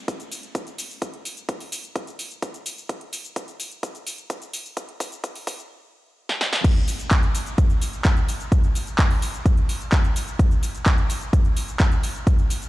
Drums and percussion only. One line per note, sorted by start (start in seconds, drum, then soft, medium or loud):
0.08 kick loud
0.08 closed hi-hat medium
0.08 shaker soft
0.20 closed hi-hat soft
0.20 shaker soft
0.32 open hi-hat loud
0.32 shaker medium
0.43 closed hi-hat soft
0.43 shaker soft
0.55 kick loud
0.55 closed hi-hat medium
0.55 shaker soft
0.67 closed hi-hat soft
0.67 shaker soft
0.78 open hi-hat loud
0.78 shaker medium
0.91 shaker soft
1.02 kick loud
1.02 closed hi-hat medium
1.02 shaker soft
1.14 closed hi-hat soft
1.25 open hi-hat loud
1.25 shaker medium
1.37 closed hi-hat soft
1.37 shaker soft
1.49 kick loud
1.49 closed hi-hat medium
1.49 shaker soft
1.60 open hi-hat medium
1.60 shaker soft
1.72 open hi-hat loud
1.72 shaker medium
1.84 closed hi-hat soft
1.84 shaker soft
1.96 kick loud
1.96 closed hi-hat medium
1.96 shaker soft
2.07 closed hi-hat soft
2.07 shaker soft
2.19 open hi-hat loud
2.19 shaker medium
2.31 closed hi-hat soft
2.31 shaker soft
2.42 kick loud
2.42 closed hi-hat medium
2.42 shaker soft
2.54 closed hi-hat soft
2.54 shaker soft
2.66 open hi-hat loud
2.66 shaker medium
2.78 shaker soft
2.89 kick loud
2.89 closed hi-hat medium
2.89 shaker soft
3.01 closed hi-hat soft
3.13 open hi-hat loud
3.13 shaker medium
3.25 closed hi-hat soft
3.25 shaker soft
3.36 kick loud
3.36 closed hi-hat medium
3.36 shaker soft
3.48 closed hi-hat soft
3.48 shaker soft
3.60 open hi-hat loud
3.60 shaker medium
3.71 closed hi-hat soft
3.71 shaker soft
3.83 kick loud
3.83 closed hi-hat medium
3.83 shaker soft
3.95 closed hi-hat soft
3.95 shaker soft
4.07 open hi-hat loud
4.07 shaker medium
4.18 closed hi-hat soft
4.18 shaker soft
4.30 kick loud
4.30 closed hi-hat medium
4.30 shaker soft
4.42 closed hi-hat soft
4.42 shaker soft
4.53 open hi-hat loud
4.53 shaker medium
4.66 shaker soft
4.77 kick loud
4.77 closed hi-hat medium
4.77 shaker soft
4.89 closed hi-hat soft
5.00 kick loud
5.00 open hi-hat loud
5.00 shaker medium
5.12 closed hi-hat soft
5.12 shaker soft
5.24 kick loud
5.24 closed hi-hat medium
5.24 shaker soft
5.36 open hi-hat medium
5.36 shaker soft
5.47 kick loud
5.47 open hi-hat loud
5.47 shaker medium
5.59 closed hi-hat soft
5.59 shaker soft
6.29 snare medium
6.41 snare medium
6.53 snare medium
6.64 kick loud
6.64 closed hi-hat loud
6.64 crash loud
6.64 shaker soft
6.76 closed hi-hat soft
6.76 shaker soft
6.88 open hi-hat loud
6.88 shaker medium
6.99 closed hi-hat soft
6.99 shaker soft
7.11 kick loud
7.11 clap loud
7.11 closed hi-hat loud
7.11 shaker soft
7.23 closed hi-hat soft
7.23 shaker soft
7.35 open hi-hat loud
7.35 shaker medium
7.46 closed hi-hat soft
7.46 shaker soft
7.58 kick loud
7.58 closed hi-hat medium
7.58 shaker soft
7.70 closed hi-hat soft
7.70 shaker soft
7.82 open hi-hat loud
7.82 shaker medium
7.93 closed hi-hat soft
7.93 shaker soft
8.05 kick loud
8.05 clap loud
8.05 closed hi-hat medium
8.05 shaker soft
8.17 closed hi-hat soft
8.17 shaker soft
8.28 open hi-hat loud
8.28 shaker medium
8.40 closed hi-hat soft
8.40 shaker soft
8.52 kick loud
8.52 closed hi-hat medium
8.52 shaker soft
8.64 closed hi-hat soft
8.64 shaker soft
8.75 open hi-hat loud
8.75 shaker medium
8.87 closed hi-hat soft
8.87 shaker soft
8.99 kick loud
8.99 clap loud
8.99 closed hi-hat loud
8.99 shaker soft
9.11 open hi-hat medium
9.11 shaker soft
9.22 open hi-hat loud
9.22 shaker medium
9.34 closed hi-hat soft
9.34 shaker soft
9.46 kick loud
9.46 closed hi-hat medium
9.46 shaker soft
9.57 closed hi-hat soft
9.57 shaker soft
9.69 open hi-hat loud
9.69 shaker medium
9.81 closed hi-hat soft
9.81 shaker soft
9.92 kick loud
9.92 clap loud
9.92 closed hi-hat medium
9.92 shaker soft
10.04 closed hi-hat soft
10.04 shaker soft
10.16 open hi-hat loud
10.16 shaker medium
10.28 closed hi-hat soft
10.28 shaker soft
10.39 kick loud
10.39 closed hi-hat medium
10.39 shaker soft
10.51 closed hi-hat soft
10.51 shaker soft
10.63 open hi-hat loud
10.63 shaker medium
10.75 closed hi-hat soft
10.75 shaker soft
10.86 kick loud
10.86 clap loud
10.86 closed hi-hat medium
10.86 shaker soft
10.98 closed hi-hat soft
10.98 shaker soft
11.10 open hi-hat loud
11.10 shaker medium
11.21 closed hi-hat soft
11.21 shaker soft
11.33 kick loud
11.33 closed hi-hat medium
11.33 shaker soft
11.45 closed hi-hat soft
11.45 shaker soft
11.57 open hi-hat loud
11.57 shaker medium
11.68 closed hi-hat soft
11.68 shaker soft
11.80 kick loud
11.80 clap loud
11.80 closed hi-hat medium
11.80 shaker soft
11.92 closed hi-hat soft
11.92 shaker soft
12.03 open hi-hat loud
12.03 shaker medium
12.16 shaker soft
12.27 kick loud
12.27 closed hi-hat medium
12.27 shaker soft
12.39 closed hi-hat soft
12.39 shaker soft
12.50 open hi-hat loud
12.50 shaker medium
12.62 closed hi-hat soft
12.62 shaker soft